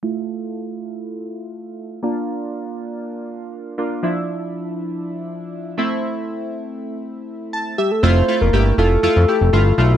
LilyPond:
<<
  \new Staff \with { instrumentName = "Soft synth lead" } { \time 4/4 \key f \major \tempo 4 = 120 r1 | r1 | r1 | r2. r8 g'16 a'16 |
c''8. bes'8. a'2 r8 | }
  \new Staff \with { instrumentName = "Synth keys" } { \time 4/4 \key f \major << { r1 | r1 | r1 | r2. a''8 e''8 |
r1 | } \\ { <a e' f'>1 | <bes d' f'>2.~ <bes d' f'>8 <bes d' f'>8 | <f d' e'>2.~ <f d' e'>8 <a c' e'>8~ | <a c' e'>2.~ <a c' e'>8 r8 |
<a e' f'>8 <a e' f'>8 <a e' g'>8 <a e' f'>8 <a e' f'>8 <a e' g'>8 <a e' f'>8 <a e' f'>8 | } >> }
  \new Staff \with { instrumentName = "Analog synth bass" } { \clef bass \time 4/4 \key f \major r1 | r1 | r1 | r1 |
f,,8 r16 f,,16 g,,8 f,,8 f,16 f,16 r16 f,,16 g,,8 b,,8 | }
>>